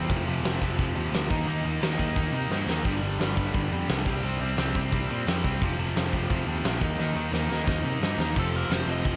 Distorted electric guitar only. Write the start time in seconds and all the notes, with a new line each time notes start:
0.09 F2 C3 F3
0.28 F2 C3 F3
0.46 F2 C3 F3
0.62 F2 C3 F3
0.80 F2 C3 F3
0.96 F2 C3 F3
1.14 F2 C3 F3
1.30 D#3 A#3 D#4
1.48 D#3 A#3 D#4
1.65 D#3 A#3 D#4
1.82 D#3 A#3 D#4
1.99 D#3 A#3 D#4
2.17 D#3 A#3 D#4
2.34 D#3 A#3 D#4
2.51 D#3 A#3 D#4
2.68 D#3 A#3 D#4
2.85 G2 D3 G3
3.03 G2 D3 G3
3.19 G2 D3 G3
3.37 G2 D3 G3
3.54 G2 D3 G3
3.72 G2 D3 G3
3.89 G2 D3 G3
4.06 C3 G3 C4
4.24 C3 G3 C4
4.41 C3 G3 C4
4.58 C3 G3 C4
4.74 C3 G3 C4
4.92 C3 G3 C4
5.10 C3 G3 C4
5.27 C3 G3 C4
5.44 C3 G3 C4
5.62 F2 C3 F3
5.79 F2 C3 F3
5.97 F2 C3 F3
6.14 F2 C3 F3
6.31 F2 C3 F3
6.48 F2 C3 F3
6.65 F2 C3 F3
6.82 D#3 A#3 D#4
6.99 D#3 A#3 D#4
7.17 D#3 A#3 D#4
7.33 D#3 A#3 D#4
7.50 D#3 A#3 D#4
7.67 D#3 A#3 D#4
7.84 D#3 A#3 D#4
8.02 D#3 A#3 D#4
8.18 D#3 A#3 D#4
8.36 F2 C3 F3
8.70 F2 C3 F3
8.88 F2 C3 F3
9.05 F2 C3 F3